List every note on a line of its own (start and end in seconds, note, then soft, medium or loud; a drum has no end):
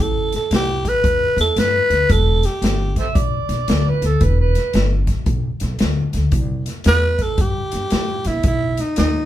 0.00 0.32 A1 medium
0.00 0.34 A4 medium
0.32 0.52 A4 medium
0.32 snare soft
0.32 closed hi-hat medium
0.51 0.85 C2 medium
0.51 snare loud
0.51 closed hi-hat medium
0.55 0.90 G4 medium
0.85 1.40 B4 medium
0.85 kick medium
0.85 snare soft
0.85 closed hi-hat medium
1.04 1.26 E2 medium
1.04 kick loud
1.04 closed hi-hat medium
1.37 1.49 E2 medium
1.37 1.61 A4 medium
1.37 snare soft
1.37 closed hi-hat medium
1.56 1.78 G2 medium
1.56 2.13 B4 loud
1.56 snare loud
1.56 closed hi-hat medium
1.90 2.02 D2 medium
1.90 snare soft
1.90 closed hi-hat medium
2.10 2.44 E1 medium
2.10 2.47 A4 loud
2.10 kick medium
2.10 closed hi-hat medium
2.43 2.97 G4 medium
2.43 snare soft
2.43 closed hi-hat medium
2.62 2.96 G1 medium
2.62 snare loud
2.62 closed hi-hat medium
2.96 3.07 A4 medium
2.96 3.07 C5 medium
2.96 3.18 E5 medium
2.96 kick medium
2.96 snare soft
2.96 closed hi-hat medium
3.15 3.37 B1 medium
3.15 3.90 D5 medium
3.15 kick loud
3.15 closed hi-hat medium
3.49 3.61 B1 medium
3.49 snare soft
3.49 closed hi-hat medium
3.68 3.90 D2 medium
3.68 snare loud
3.68 closed hi-hat medium
3.89 4.07 B4 medium
4.02 4.14 D2 medium
4.02 4.25 A4 medium
4.02 snare soft
4.02 closed hi-hat medium
4.21 4.55 E1 medium
4.21 4.39 B4 medium
4.21 kick medium
4.21 closed hi-hat medium
4.41 4.91 B4 medium
4.55 snare soft
4.55 closed hi-hat medium
4.73 5.08 G1 medium
4.73 snare loud
4.73 closed hi-hat medium
5.07 kick medium
5.07 snare soft
5.07 closed hi-hat medium
5.26 5.48 B1 medium
5.26 kick loud
5.26 closed hi-hat medium
5.60 5.73 B1 medium
5.60 snare soft
5.60 closed hi-hat medium
5.79 6.02 D2 medium
5.79 snare loud
5.79 closed hi-hat medium
6.13 6.26 D2 medium
6.13 snare soft
6.13 closed hi-hat medium
6.32 6.66 C2 medium
6.32 kick loud
6.32 closed hi-hat medium
6.66 snare soft
6.66 closed hi-hat medium
6.84 7.19 E2 medium
6.84 7.24 B4 loud
6.84 snare loud
6.84 closed hi-hat medium
7.19 7.42 A4 medium
7.19 kick medium
7.19 snare soft
7.19 closed hi-hat medium
7.38 7.60 G2 medium
7.38 8.29 G4 medium
7.38 kick loud
7.38 closed hi-hat medium
7.72 7.85 G2 medium
7.72 snare soft
7.72 closed hi-hat medium
7.90 8.13 A2 medium
7.90 snare loud
7.90 closed hi-hat medium
8.24 8.38 A#1 medium
8.24 8.45 E4 medium
8.24 snare soft
8.24 closed hi-hat medium
8.43 8.78 B1 medium
8.43 8.82 E4 medium
8.43 kick loud
8.43 closed hi-hat medium
8.77 8.98 D#4 medium
8.77 snare soft
8.77 closed hi-hat medium
8.96 9.25 D#2 medium
8.96 9.25 D#4 medium
8.96 snare loud
8.96 closed hi-hat medium